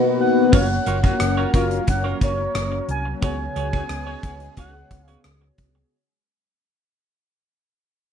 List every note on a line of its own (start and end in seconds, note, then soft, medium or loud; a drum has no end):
0.00 0.50 D#3 medium
0.00 0.49 F#3 medium
0.00 0.52 A#3 loud
0.00 0.50 B3 medium
0.00 0.55 B3 loud
0.00 0.55 D#4 loud
0.00 0.16 F#4 loud
0.00 0.50 F#4 medium
0.00 0.53 F#4 loud
0.00 0.55 B4 loud
0.21 0.51 F#5 medium
0.52 0.77 F#1 loud
0.52 5.88 F#3 medium
0.52 3.18 A#3 medium
0.52 3.20 A#3 medium
0.52 3.18 C#4 medium
0.52 0.66 C#4 medium
0.52 3.20 C#4 medium
0.52 0.66 F4 medium
0.52 3.19 F#4 medium
0.52 3.20 A#4 medium
0.52 0.66 A#4 medium
0.52 3.19 C#5 medium
0.52 0.66 C#5 loud
0.52 1.01 F#5 loud
0.52 kick loud
0.52 crash medium
0.86 1.11 F#1 medium
0.86 0.97 C#4 medium
0.86 0.97 F4 medium
0.86 0.97 A#4 medium
0.86 0.97 C#5 medium
0.86 closed hi-hat medium
1.03 1.14 C#4 soft
1.03 1.14 F4 soft
1.03 1.14 A#4 medium
1.03 1.13 C#5 medium
1.03 1.52 F#5 loud
1.03 kick medium
1.20 1.44 F#1 medium
1.20 muted clean electric guitar stroke soft
1.20 cross-stick medium
1.20 closed hi-hat medium
1.37 1.51 C#4 medium
1.37 1.51 F4 medium
1.37 1.50 A#4 medium
1.37 1.50 C#5 medium
1.54 1.78 F#1 medium
1.54 1.83 F#3 loud
1.54 1.64 C#4 medium
1.54 1.83 F4 loud
1.54 1.64 F4 medium
1.54 1.82 A#4 loud
1.54 1.65 A#4 medium
1.54 1.65 C#5 medium
1.54 1.86 F5 medium
1.54 kick medium
1.54 closed hi-hat medium
1.71 muted clean electric guitar stroke soft
1.71 closed hi-hat soft
1.87 2.12 F#1 loud
1.87 2.04 F#5 loud
1.87 muted clean electric guitar stroke soft
1.87 kick medium
1.87 closed hi-hat medium
2.04 2.18 C#4 medium
2.04 2.18 F4 medium
2.04 2.17 A#4 medium
2.04 2.17 C#5 medium
2.21 2.46 F#1 medium
2.21 2.31 C#4 medium
2.21 2.32 F4 medium
2.21 2.32 A#4 medium
2.21 2.32 C#5 medium
2.21 2.86 C#5 loud
2.21 kick medium
2.21 closed hi-hat medium
2.38 muted clean electric guitar stroke soft
2.55 2.79 F#1 medium
2.55 muted clean electric guitar stroke soft
2.55 cross-stick loud
2.55 closed hi-hat medium
2.72 muted clean electric guitar stroke soft
2.88 3.13 C2 medium
2.88 3.05 G#5 loud
2.88 closed hi-hat medium
3.05 muted clean electric guitar stroke soft
3.21 3.47 C#2 loud
3.21 4.20 C#3 medium
3.21 5.89 G#3 medium
3.21 5.88 B3 medium
3.21 3.35 B3 medium
3.21 5.90 B3 medium
3.21 5.90 C#4 medium
3.21 5.88 F#4 medium
3.21 3.36 F#4 medium
3.21 5.90 G#4 medium
3.21 5.88 G#4 medium
3.21 3.36 G#4 medium
3.21 3.36 C#5 medium
3.21 5.89 C#5 medium
3.21 4.55 G#5 loud
3.21 kick loud
3.21 closed hi-hat medium
3.56 3.80 C#2 medium
3.56 3.66 B3 medium
3.56 3.67 F#4 medium
3.56 3.67 G#4 medium
3.56 3.67 C#5 medium
3.56 closed hi-hat medium
3.73 3.84 B3 soft
3.73 3.84 F#4 medium
3.73 3.83 G#4 medium
3.73 3.83 C#5 medium
3.73 kick medium
3.89 4.14 C#2 medium
3.89 muted clean electric guitar stroke soft
3.89 cross-stick medium
3.89 closed hi-hat medium
4.07 4.20 B3 medium
4.07 4.20 F#4 medium
4.07 4.20 G#4 medium
4.07 4.20 C#5 medium
4.23 4.48 C#2 medium
4.23 4.34 B3 medium
4.23 4.34 F#4 medium
4.23 4.34 G#4 medium
4.23 4.34 C#5 medium
4.23 kick medium
4.23 closed hi-hat medium
4.40 muted clean electric guitar stroke soft
4.40 closed hi-hat soft
4.57 4.82 C#2 medium
4.57 4.70 B3 medium
4.57 4.71 F#4 medium
4.57 4.71 G#4 medium
4.57 4.71 C#5 medium
4.57 5.03 F#5 medium
4.57 kick medium
4.57 closed hi-hat medium
4.74 muted clean electric guitar stroke soft
4.91 5.15 C#2 medium
4.91 muted clean electric guitar stroke soft
4.91 kick medium
4.91 closed hi-hat medium
5.03 5.22 F5 medium
5.08 5.19 B3 soft
5.08 5.18 F#4 soft
5.08 5.18 G#4 soft
5.08 5.18 C#5 medium
5.08 closed hi-hat soft
5.24 5.49 C#2 medium
5.24 muted clean electric guitar stroke soft
5.24 cross-stick loud
5.24 closed hi-hat medium
5.42 muted clean electric guitar stroke soft
5.58 5.83 C2 medium
5.58 kick medium
5.58 closed hi-hat medium
5.75 muted clean electric guitar stroke soft